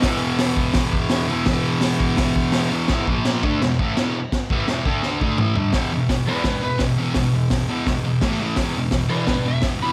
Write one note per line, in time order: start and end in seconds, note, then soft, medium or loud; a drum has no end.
0.00 1.27 E2 medium
0.00 3.09 B3 medium
0.00 kick loud
0.00 snare loud
0.00 open hi-hat medium
0.05 1.28 B2 loud
0.05 1.27 E3 loud
0.39 snare loud
0.39 open hi-hat medium
0.57 kick medium
0.74 kick loud
0.74 snare loud
0.74 open hi-hat medium
0.93 kick medium
1.10 snare loud
1.10 open hi-hat medium
1.28 1.47 B2 medium
1.28 1.46 E3 loud
1.33 1.45 E2 medium
1.46 2.70 E2 loud
1.46 2.71 B2 loud
1.46 kick loud
1.46 snare loud
1.46 open hi-hat medium
1.50 2.69 E3 loud
1.81 snare loud
1.81 open hi-hat medium
2.00 kick medium
2.17 kick loud
2.17 snare loud
2.17 open hi-hat medium
2.36 kick medium
2.52 snare loud
2.52 open hi-hat medium
2.70 2.87 E2 medium
2.70 2.89 B2 medium
2.70 2.87 E3 medium
2.88 3.06 E2 loud
2.88 3.07 B2 loud
2.88 3.07 E3 loud
2.88 kick loud
2.88 snare loud
2.88 crash medium
3.07 3.42 A#2 medium
3.07 3.43 F3 loud
3.07 3.43 A#3 loud
3.07 kick loud
3.25 snare loud
3.25 crash medium
3.43 3.60 D3 medium
3.43 3.61 A3 medium
3.43 3.60 D4 loud
3.43 kick loud
3.62 3.76 E2 medium
3.62 3.75 B2 medium
3.62 snare loud
3.62 crash medium
3.79 3.96 A2 medium
3.79 3.97 E3 loud
3.79 3.97 A3 loud
3.79 kick loud
3.97 4.14 E2 loud
3.97 4.15 B2 loud
3.97 4.15 E3 loud
3.97 snare loud
3.97 crash medium
4.32 kick medium
4.32 snare loud
4.32 crash soft
4.50 4.67 A2 medium
4.50 4.68 E3 medium
4.50 4.68 A3 loud
4.50 kick loud
4.67 4.84 E2 medium
4.67 4.85 B2 medium
4.67 4.86 E3 loud
4.67 snare loud
4.67 crash medium
4.85 5.19 D3 medium
4.85 5.21 A3 medium
4.85 5.21 D4 medium
4.85 kick loud
5.03 snare medium
5.21 5.38 D3 medium
5.21 5.38 A3 medium
5.21 5.39 D4 loud
5.21 kick loud
5.38 5.55 A2 loud
5.38 5.56 E3 loud
5.38 5.56 A3 loud
5.38 mid tom medium
5.55 5.73 G2 medium
5.55 5.73 D3 loud
5.55 5.74 G3 loud
5.55 floor tom medium
5.73 5.91 E2 medium
5.73 5.91 B2 medium
5.73 5.91 E3 loud
5.73 kick loud
5.73 snare loud
5.73 open hi-hat medium
5.93 6.08 E2 medium
5.93 6.08 B2 medium
6.09 6.25 E2 medium
6.09 6.25 B2 medium
6.09 kick loud
6.09 snare loud
6.09 open hi-hat medium
6.26 6.43 E2 medium
6.26 6.44 B2 medium
6.26 6.45 E3 medium
6.26 6.45 B4 medium
6.26 6.45 D5 medium
6.44 6.61 E2 medium
6.44 6.61 B2 medium
6.44 6.61 D4 medium
6.44 6.62 B4 loud
6.44 kick loud
6.44 snare loud
6.44 open hi-hat medium
6.62 6.77 E2 medium
6.62 6.78 B2 medium
6.62 6.80 B4 medium
6.78 6.95 E2 medium
6.78 6.96 B2 medium
6.78 kick loud
6.78 snare loud
6.78 open hi-hat medium
6.98 7.14 E2 medium
6.98 7.15 B2 medium
6.98 7.15 E3 loud
7.15 7.32 E2 medium
7.15 7.32 B2 medium
7.15 kick loud
7.15 snare loud
7.15 open hi-hat medium
7.33 7.49 E2 medium
7.33 7.50 B2 medium
7.50 7.68 E2 medium
7.50 7.68 B2 medium
7.50 kick loud
7.50 snare loud
7.50 open hi-hat medium
7.69 7.86 E2 medium
7.69 7.86 B2 medium
7.69 7.87 E3 loud
7.87 8.03 E2 medium
7.87 8.03 B2 medium
7.87 kick loud
7.87 snare loud
7.87 open hi-hat soft
8.05 8.21 E2 medium
8.05 8.21 B2 medium
8.21 8.39 A2 loud
8.21 8.39 E3 medium
8.21 8.40 A3 loud
8.21 kick loud
8.21 snare loud
8.21 open hi-hat medium
8.41 8.57 A2 loud
8.41 8.57 E3 medium
8.41 8.58 A3 loud
8.56 8.73 E2 medium
8.56 8.73 B2 loud
8.56 8.75 E3 loud
8.56 kick loud
8.56 snare loud
8.56 open hi-hat medium
8.74 8.91 E2 medium
8.74 8.91 B2 medium
8.91 9.08 E2 medium
8.91 9.09 B2 medium
8.91 kick loud
8.91 snare loud
8.91 open hi-hat medium
9.09 9.27 E2 medium
9.09 9.27 B2 medium
9.09 9.27 E3 loud
9.09 9.26 B4 medium
9.09 9.28 D5 medium
9.27 9.44 E2 medium
9.27 9.45 B2 medium
9.27 9.44 D4 medium
9.27 9.45 B4 medium
9.27 kick loud
9.27 snare loud
9.27 open hi-hat medium
9.46 9.62 E2 medium
9.46 9.62 B2 medium
9.46 9.64 E5 medium
9.62 9.80 E2 medium
9.62 9.80 B2 medium
9.62 kick loud
9.62 snare loud
9.62 open hi-hat medium
9.81 9.93 E2 medium
9.81 9.93 B2 medium
9.81 9.93 E3 medium
9.81 9.93 B5 medium